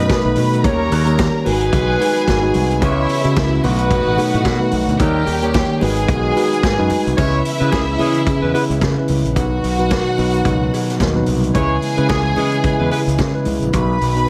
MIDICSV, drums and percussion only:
0, 0, Header, 1, 2, 480
1, 0, Start_track
1, 0, Key_signature, 4, "minor"
1, 0, Tempo, 545455
1, 567, Time_signature, 4, 2, 24, 8
1, 12576, End_track
2, 0, Start_track
2, 0, Title_t, "Drums"
2, 84, Note_on_c, 9, 36, 106
2, 84, Note_on_c, 9, 42, 62
2, 86, Note_on_c, 9, 56, 74
2, 89, Note_on_c, 9, 63, 96
2, 94, Note_on_c, 9, 38, 109
2, 172, Note_off_c, 9, 36, 0
2, 172, Note_off_c, 9, 42, 0
2, 174, Note_off_c, 9, 56, 0
2, 177, Note_off_c, 9, 63, 0
2, 182, Note_off_c, 9, 38, 0
2, 313, Note_on_c, 9, 46, 61
2, 326, Note_on_c, 9, 63, 85
2, 401, Note_off_c, 9, 46, 0
2, 414, Note_off_c, 9, 63, 0
2, 469, Note_on_c, 9, 42, 42
2, 557, Note_off_c, 9, 42, 0
2, 566, Note_on_c, 9, 36, 113
2, 566, Note_on_c, 9, 42, 63
2, 566, Note_on_c, 9, 56, 79
2, 570, Note_on_c, 9, 62, 63
2, 654, Note_off_c, 9, 36, 0
2, 654, Note_off_c, 9, 42, 0
2, 654, Note_off_c, 9, 56, 0
2, 658, Note_off_c, 9, 62, 0
2, 805, Note_on_c, 9, 46, 66
2, 813, Note_on_c, 9, 56, 68
2, 893, Note_off_c, 9, 46, 0
2, 901, Note_off_c, 9, 56, 0
2, 938, Note_on_c, 9, 42, 44
2, 1026, Note_off_c, 9, 42, 0
2, 1042, Note_on_c, 9, 42, 66
2, 1046, Note_on_c, 9, 36, 105
2, 1047, Note_on_c, 9, 63, 91
2, 1050, Note_on_c, 9, 56, 75
2, 1051, Note_on_c, 9, 38, 112
2, 1130, Note_off_c, 9, 42, 0
2, 1134, Note_off_c, 9, 36, 0
2, 1135, Note_off_c, 9, 63, 0
2, 1138, Note_off_c, 9, 56, 0
2, 1139, Note_off_c, 9, 38, 0
2, 1285, Note_on_c, 9, 62, 64
2, 1287, Note_on_c, 9, 46, 84
2, 1373, Note_off_c, 9, 62, 0
2, 1375, Note_off_c, 9, 46, 0
2, 1415, Note_on_c, 9, 42, 50
2, 1503, Note_off_c, 9, 42, 0
2, 1520, Note_on_c, 9, 36, 114
2, 1520, Note_on_c, 9, 42, 76
2, 1523, Note_on_c, 9, 64, 78
2, 1531, Note_on_c, 9, 56, 84
2, 1608, Note_off_c, 9, 36, 0
2, 1608, Note_off_c, 9, 42, 0
2, 1611, Note_off_c, 9, 64, 0
2, 1619, Note_off_c, 9, 56, 0
2, 1762, Note_on_c, 9, 62, 43
2, 1773, Note_on_c, 9, 46, 69
2, 1773, Note_on_c, 9, 56, 86
2, 1850, Note_off_c, 9, 62, 0
2, 1861, Note_off_c, 9, 46, 0
2, 1861, Note_off_c, 9, 56, 0
2, 1911, Note_on_c, 9, 42, 49
2, 1999, Note_off_c, 9, 42, 0
2, 2003, Note_on_c, 9, 36, 101
2, 2004, Note_on_c, 9, 42, 62
2, 2007, Note_on_c, 9, 63, 94
2, 2008, Note_on_c, 9, 56, 81
2, 2014, Note_on_c, 9, 38, 91
2, 2091, Note_off_c, 9, 36, 0
2, 2092, Note_off_c, 9, 42, 0
2, 2095, Note_off_c, 9, 63, 0
2, 2096, Note_off_c, 9, 56, 0
2, 2102, Note_off_c, 9, 38, 0
2, 2234, Note_on_c, 9, 46, 57
2, 2244, Note_on_c, 9, 63, 83
2, 2322, Note_off_c, 9, 46, 0
2, 2332, Note_off_c, 9, 63, 0
2, 2386, Note_on_c, 9, 42, 43
2, 2474, Note_off_c, 9, 42, 0
2, 2481, Note_on_c, 9, 42, 62
2, 2481, Note_on_c, 9, 56, 76
2, 2482, Note_on_c, 9, 36, 100
2, 2489, Note_on_c, 9, 62, 65
2, 2569, Note_off_c, 9, 42, 0
2, 2569, Note_off_c, 9, 56, 0
2, 2570, Note_off_c, 9, 36, 0
2, 2577, Note_off_c, 9, 62, 0
2, 2719, Note_on_c, 9, 46, 72
2, 2728, Note_on_c, 9, 56, 71
2, 2807, Note_off_c, 9, 46, 0
2, 2816, Note_off_c, 9, 56, 0
2, 2853, Note_on_c, 9, 42, 39
2, 2941, Note_off_c, 9, 42, 0
2, 2958, Note_on_c, 9, 42, 68
2, 2961, Note_on_c, 9, 56, 85
2, 2963, Note_on_c, 9, 36, 111
2, 2964, Note_on_c, 9, 63, 96
2, 2968, Note_on_c, 9, 38, 110
2, 3046, Note_off_c, 9, 42, 0
2, 3049, Note_off_c, 9, 56, 0
2, 3051, Note_off_c, 9, 36, 0
2, 3052, Note_off_c, 9, 63, 0
2, 3056, Note_off_c, 9, 38, 0
2, 3201, Note_on_c, 9, 62, 64
2, 3201, Note_on_c, 9, 64, 80
2, 3204, Note_on_c, 9, 46, 80
2, 3289, Note_off_c, 9, 62, 0
2, 3289, Note_off_c, 9, 64, 0
2, 3292, Note_off_c, 9, 46, 0
2, 3332, Note_on_c, 9, 42, 49
2, 3420, Note_off_c, 9, 42, 0
2, 3437, Note_on_c, 9, 36, 115
2, 3438, Note_on_c, 9, 42, 72
2, 3442, Note_on_c, 9, 56, 77
2, 3525, Note_off_c, 9, 36, 0
2, 3526, Note_off_c, 9, 42, 0
2, 3530, Note_off_c, 9, 56, 0
2, 3674, Note_on_c, 9, 62, 44
2, 3681, Note_on_c, 9, 56, 76
2, 3688, Note_on_c, 9, 46, 66
2, 3762, Note_off_c, 9, 62, 0
2, 3769, Note_off_c, 9, 56, 0
2, 3776, Note_off_c, 9, 46, 0
2, 3823, Note_on_c, 9, 42, 46
2, 3911, Note_off_c, 9, 42, 0
2, 3915, Note_on_c, 9, 42, 59
2, 3915, Note_on_c, 9, 56, 71
2, 3916, Note_on_c, 9, 36, 99
2, 3919, Note_on_c, 9, 63, 84
2, 3926, Note_on_c, 9, 38, 99
2, 4003, Note_off_c, 9, 42, 0
2, 4003, Note_off_c, 9, 56, 0
2, 4004, Note_off_c, 9, 36, 0
2, 4007, Note_off_c, 9, 63, 0
2, 4014, Note_off_c, 9, 38, 0
2, 4148, Note_on_c, 9, 46, 57
2, 4153, Note_on_c, 9, 63, 80
2, 4236, Note_off_c, 9, 46, 0
2, 4241, Note_off_c, 9, 63, 0
2, 4300, Note_on_c, 9, 42, 44
2, 4388, Note_off_c, 9, 42, 0
2, 4397, Note_on_c, 9, 42, 61
2, 4397, Note_on_c, 9, 56, 84
2, 4398, Note_on_c, 9, 36, 112
2, 4402, Note_on_c, 9, 62, 61
2, 4485, Note_off_c, 9, 42, 0
2, 4485, Note_off_c, 9, 56, 0
2, 4486, Note_off_c, 9, 36, 0
2, 4490, Note_off_c, 9, 62, 0
2, 4634, Note_on_c, 9, 56, 65
2, 4638, Note_on_c, 9, 46, 58
2, 4722, Note_off_c, 9, 56, 0
2, 4726, Note_off_c, 9, 46, 0
2, 4771, Note_on_c, 9, 42, 41
2, 4859, Note_off_c, 9, 42, 0
2, 4874, Note_on_c, 9, 56, 74
2, 4876, Note_on_c, 9, 42, 69
2, 4878, Note_on_c, 9, 63, 89
2, 4879, Note_on_c, 9, 36, 112
2, 4885, Note_on_c, 9, 38, 118
2, 4962, Note_off_c, 9, 56, 0
2, 4964, Note_off_c, 9, 42, 0
2, 4966, Note_off_c, 9, 63, 0
2, 4967, Note_off_c, 9, 36, 0
2, 4973, Note_off_c, 9, 38, 0
2, 5116, Note_on_c, 9, 62, 64
2, 5123, Note_on_c, 9, 46, 83
2, 5204, Note_off_c, 9, 62, 0
2, 5211, Note_off_c, 9, 46, 0
2, 5250, Note_on_c, 9, 42, 53
2, 5338, Note_off_c, 9, 42, 0
2, 5354, Note_on_c, 9, 36, 116
2, 5354, Note_on_c, 9, 64, 82
2, 5356, Note_on_c, 9, 42, 76
2, 5361, Note_on_c, 9, 56, 76
2, 5442, Note_off_c, 9, 36, 0
2, 5442, Note_off_c, 9, 64, 0
2, 5444, Note_off_c, 9, 42, 0
2, 5449, Note_off_c, 9, 56, 0
2, 5591, Note_on_c, 9, 62, 42
2, 5605, Note_on_c, 9, 56, 86
2, 5609, Note_on_c, 9, 46, 66
2, 5679, Note_off_c, 9, 62, 0
2, 5693, Note_off_c, 9, 56, 0
2, 5697, Note_off_c, 9, 46, 0
2, 5745, Note_on_c, 9, 42, 48
2, 5833, Note_off_c, 9, 42, 0
2, 5837, Note_on_c, 9, 36, 109
2, 5837, Note_on_c, 9, 56, 73
2, 5837, Note_on_c, 9, 63, 82
2, 5840, Note_on_c, 9, 42, 59
2, 5851, Note_on_c, 9, 38, 106
2, 5925, Note_off_c, 9, 36, 0
2, 5925, Note_off_c, 9, 56, 0
2, 5925, Note_off_c, 9, 63, 0
2, 5928, Note_off_c, 9, 42, 0
2, 5939, Note_off_c, 9, 38, 0
2, 6068, Note_on_c, 9, 46, 58
2, 6075, Note_on_c, 9, 63, 92
2, 6156, Note_off_c, 9, 46, 0
2, 6163, Note_off_c, 9, 63, 0
2, 6223, Note_on_c, 9, 42, 46
2, 6311, Note_off_c, 9, 42, 0
2, 6317, Note_on_c, 9, 56, 71
2, 6318, Note_on_c, 9, 36, 113
2, 6318, Note_on_c, 9, 62, 68
2, 6319, Note_on_c, 9, 42, 65
2, 6405, Note_off_c, 9, 56, 0
2, 6406, Note_off_c, 9, 36, 0
2, 6406, Note_off_c, 9, 62, 0
2, 6407, Note_off_c, 9, 42, 0
2, 6557, Note_on_c, 9, 46, 65
2, 6645, Note_off_c, 9, 46, 0
2, 6691, Note_on_c, 9, 42, 37
2, 6779, Note_off_c, 9, 42, 0
2, 6795, Note_on_c, 9, 42, 65
2, 6796, Note_on_c, 9, 63, 96
2, 6798, Note_on_c, 9, 56, 73
2, 6799, Note_on_c, 9, 36, 113
2, 6805, Note_on_c, 9, 38, 116
2, 6883, Note_off_c, 9, 42, 0
2, 6884, Note_off_c, 9, 63, 0
2, 6886, Note_off_c, 9, 56, 0
2, 6887, Note_off_c, 9, 36, 0
2, 6893, Note_off_c, 9, 38, 0
2, 7033, Note_on_c, 9, 62, 60
2, 7033, Note_on_c, 9, 64, 85
2, 7041, Note_on_c, 9, 46, 83
2, 7121, Note_off_c, 9, 62, 0
2, 7121, Note_off_c, 9, 64, 0
2, 7129, Note_off_c, 9, 46, 0
2, 7167, Note_on_c, 9, 42, 50
2, 7255, Note_off_c, 9, 42, 0
2, 7273, Note_on_c, 9, 42, 73
2, 7274, Note_on_c, 9, 36, 114
2, 7278, Note_on_c, 9, 56, 80
2, 7361, Note_off_c, 9, 42, 0
2, 7362, Note_off_c, 9, 36, 0
2, 7366, Note_off_c, 9, 56, 0
2, 7522, Note_on_c, 9, 56, 82
2, 7527, Note_on_c, 9, 46, 60
2, 7610, Note_off_c, 9, 56, 0
2, 7615, Note_off_c, 9, 46, 0
2, 7664, Note_on_c, 9, 42, 50
2, 7752, Note_off_c, 9, 42, 0
2, 7755, Note_on_c, 9, 56, 73
2, 7757, Note_on_c, 9, 36, 106
2, 7759, Note_on_c, 9, 42, 56
2, 7760, Note_on_c, 9, 63, 90
2, 7769, Note_on_c, 9, 38, 99
2, 7843, Note_off_c, 9, 56, 0
2, 7845, Note_off_c, 9, 36, 0
2, 7847, Note_off_c, 9, 42, 0
2, 7848, Note_off_c, 9, 63, 0
2, 7857, Note_off_c, 9, 38, 0
2, 7989, Note_on_c, 9, 46, 61
2, 7996, Note_on_c, 9, 63, 82
2, 8077, Note_off_c, 9, 46, 0
2, 8084, Note_off_c, 9, 63, 0
2, 8143, Note_on_c, 9, 42, 45
2, 8231, Note_off_c, 9, 42, 0
2, 8238, Note_on_c, 9, 36, 98
2, 8238, Note_on_c, 9, 42, 66
2, 8241, Note_on_c, 9, 56, 79
2, 8245, Note_on_c, 9, 62, 57
2, 8326, Note_off_c, 9, 36, 0
2, 8326, Note_off_c, 9, 42, 0
2, 8329, Note_off_c, 9, 56, 0
2, 8333, Note_off_c, 9, 62, 0
2, 8481, Note_on_c, 9, 46, 62
2, 8569, Note_off_c, 9, 46, 0
2, 8614, Note_on_c, 9, 42, 40
2, 8702, Note_off_c, 9, 42, 0
2, 8717, Note_on_c, 9, 42, 68
2, 8717, Note_on_c, 9, 56, 72
2, 8719, Note_on_c, 9, 63, 96
2, 8721, Note_on_c, 9, 36, 103
2, 8726, Note_on_c, 9, 38, 113
2, 8805, Note_off_c, 9, 42, 0
2, 8805, Note_off_c, 9, 56, 0
2, 8807, Note_off_c, 9, 63, 0
2, 8809, Note_off_c, 9, 36, 0
2, 8814, Note_off_c, 9, 38, 0
2, 8960, Note_on_c, 9, 62, 58
2, 8966, Note_on_c, 9, 46, 81
2, 9048, Note_off_c, 9, 62, 0
2, 9054, Note_off_c, 9, 46, 0
2, 9093, Note_on_c, 9, 42, 47
2, 9181, Note_off_c, 9, 42, 0
2, 9197, Note_on_c, 9, 36, 110
2, 9197, Note_on_c, 9, 42, 70
2, 9200, Note_on_c, 9, 56, 72
2, 9285, Note_off_c, 9, 36, 0
2, 9285, Note_off_c, 9, 42, 0
2, 9288, Note_off_c, 9, 56, 0
2, 9450, Note_on_c, 9, 56, 71
2, 9454, Note_on_c, 9, 46, 66
2, 9538, Note_off_c, 9, 56, 0
2, 9542, Note_off_c, 9, 46, 0
2, 9586, Note_on_c, 9, 38, 39
2, 9591, Note_on_c, 9, 42, 49
2, 9674, Note_off_c, 9, 38, 0
2, 9679, Note_off_c, 9, 42, 0
2, 9681, Note_on_c, 9, 36, 91
2, 9681, Note_on_c, 9, 56, 77
2, 9683, Note_on_c, 9, 42, 64
2, 9684, Note_on_c, 9, 63, 87
2, 9694, Note_on_c, 9, 38, 103
2, 9769, Note_off_c, 9, 36, 0
2, 9769, Note_off_c, 9, 56, 0
2, 9771, Note_off_c, 9, 42, 0
2, 9772, Note_off_c, 9, 63, 0
2, 9782, Note_off_c, 9, 38, 0
2, 9910, Note_on_c, 9, 46, 61
2, 9919, Note_on_c, 9, 63, 83
2, 9998, Note_off_c, 9, 46, 0
2, 10007, Note_off_c, 9, 63, 0
2, 10065, Note_on_c, 9, 42, 47
2, 10153, Note_off_c, 9, 42, 0
2, 10161, Note_on_c, 9, 42, 56
2, 10162, Note_on_c, 9, 36, 101
2, 10165, Note_on_c, 9, 56, 72
2, 10166, Note_on_c, 9, 62, 60
2, 10249, Note_off_c, 9, 42, 0
2, 10250, Note_off_c, 9, 36, 0
2, 10253, Note_off_c, 9, 56, 0
2, 10254, Note_off_c, 9, 62, 0
2, 10402, Note_on_c, 9, 46, 59
2, 10490, Note_off_c, 9, 46, 0
2, 10539, Note_on_c, 9, 42, 42
2, 10627, Note_off_c, 9, 42, 0
2, 10639, Note_on_c, 9, 42, 71
2, 10643, Note_on_c, 9, 56, 82
2, 10643, Note_on_c, 9, 63, 95
2, 10645, Note_on_c, 9, 36, 107
2, 10649, Note_on_c, 9, 38, 124
2, 10727, Note_off_c, 9, 42, 0
2, 10731, Note_off_c, 9, 56, 0
2, 10731, Note_off_c, 9, 63, 0
2, 10733, Note_off_c, 9, 36, 0
2, 10737, Note_off_c, 9, 38, 0
2, 10879, Note_on_c, 9, 62, 61
2, 10879, Note_on_c, 9, 64, 78
2, 10888, Note_on_c, 9, 46, 76
2, 10967, Note_off_c, 9, 62, 0
2, 10967, Note_off_c, 9, 64, 0
2, 10976, Note_off_c, 9, 46, 0
2, 11016, Note_on_c, 9, 42, 49
2, 11104, Note_off_c, 9, 42, 0
2, 11121, Note_on_c, 9, 56, 77
2, 11122, Note_on_c, 9, 36, 115
2, 11122, Note_on_c, 9, 42, 70
2, 11209, Note_off_c, 9, 56, 0
2, 11210, Note_off_c, 9, 36, 0
2, 11210, Note_off_c, 9, 42, 0
2, 11365, Note_on_c, 9, 56, 79
2, 11375, Note_on_c, 9, 46, 61
2, 11453, Note_off_c, 9, 56, 0
2, 11463, Note_off_c, 9, 46, 0
2, 11513, Note_on_c, 9, 42, 46
2, 11601, Note_off_c, 9, 42, 0
2, 11601, Note_on_c, 9, 56, 75
2, 11605, Note_on_c, 9, 36, 96
2, 11607, Note_on_c, 9, 42, 59
2, 11607, Note_on_c, 9, 63, 84
2, 11617, Note_on_c, 9, 38, 93
2, 11689, Note_off_c, 9, 56, 0
2, 11693, Note_off_c, 9, 36, 0
2, 11695, Note_off_c, 9, 42, 0
2, 11695, Note_off_c, 9, 63, 0
2, 11705, Note_off_c, 9, 38, 0
2, 11837, Note_on_c, 9, 46, 60
2, 11844, Note_on_c, 9, 63, 83
2, 11925, Note_off_c, 9, 46, 0
2, 11932, Note_off_c, 9, 63, 0
2, 11990, Note_on_c, 9, 42, 44
2, 12078, Note_off_c, 9, 42, 0
2, 12083, Note_on_c, 9, 56, 69
2, 12088, Note_on_c, 9, 36, 104
2, 12088, Note_on_c, 9, 42, 67
2, 12093, Note_on_c, 9, 62, 62
2, 12171, Note_off_c, 9, 56, 0
2, 12176, Note_off_c, 9, 36, 0
2, 12176, Note_off_c, 9, 42, 0
2, 12181, Note_off_c, 9, 62, 0
2, 12332, Note_on_c, 9, 46, 61
2, 12420, Note_off_c, 9, 46, 0
2, 12466, Note_on_c, 9, 42, 38
2, 12554, Note_off_c, 9, 42, 0
2, 12576, End_track
0, 0, End_of_file